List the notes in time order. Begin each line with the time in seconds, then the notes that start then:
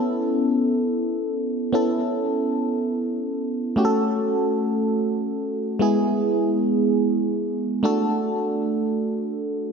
Already playing: B3 C#4 E4 A4
1.73 B3 C#4 E4 A4
3.76 A3 C#4 F#4 G4
3.85 A4
5.79 G#3 B3 E4 G#4
7.83 A3 D4 F#4 A4